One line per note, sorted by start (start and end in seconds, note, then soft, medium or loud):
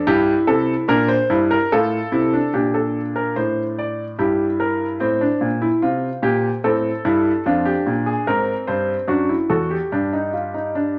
0.07 0.32 G2 medium
0.07 0.86 E4 medium
0.07 0.32 G4 loud
0.47 0.73 C3 medium
0.47 0.73 A4 medium
0.88 1.14 A#2 medium
0.88 1.14 D4 medium
0.88 1.09 A#4 loud
1.08 1.34 C5 medium
1.30 1.55 G2 medium
1.30 1.55 E4 medium
1.51 1.71 A#4 medium
1.72 1.98 A2 medium
1.72 1.98 F4 medium
1.72 2.52 A4 medium
2.12 2.38 C3 medium
2.12 2.32 E4 medium
2.33 2.52 D4 medium
2.54 3.34 A#2 medium
2.54 4.15 D4 medium
2.54 2.74 G4 medium
2.74 3.00 A4 medium
3.16 3.36 A#4 medium
3.36 4.16 A2 medium
3.36 3.62 C5 medium
3.78 4.04 D5 medium
4.19 4.98 G2 medium
4.19 4.99 E4 medium
4.19 4.44 G4 medium
4.60 4.85 A#4 medium
5.00 5.26 A2 medium
5.00 5.20 C4 medium
5.00 6.60 C5 medium
5.21 5.46 D4 medium
5.41 5.66 A#2 medium
5.62 5.82 E4 medium
5.82 6.08 C3 medium
5.82 6.08 F4 medium
6.23 6.48 A#2 medium
6.23 6.48 G4 medium
6.64 6.90 A2 medium
6.64 6.89 C4 medium
6.64 7.43 A4 medium
7.05 7.30 G2 medium
7.05 7.30 E4 medium
7.46 7.71 F2 medium
7.46 8.25 D4 medium
7.46 7.65 F4 medium
7.65 7.91 G4 medium
7.86 8.12 A#2 medium
8.06 8.26 G#4 medium
8.27 8.53 G#2 medium
8.27 9.07 C4 medium
8.27 8.53 A#4 medium
8.67 8.94 G2 medium
8.67 8.93 C5 medium
9.08 9.34 F#2 medium
9.08 9.29 D4 medium
9.08 9.34 F#4 medium
9.29 9.50 E4 medium
9.50 9.76 E2 medium
9.50 9.70 F#4 medium
9.50 9.76 A4 medium
9.71 9.91 G4 medium
9.92 10.99 G2 medium
9.92 10.13 D4 medium
9.92 10.99 G4 medium
10.13 10.33 D#4 medium
10.33 10.54 F4 medium
10.54 10.75 D#4 medium
10.75 10.99 D4 medium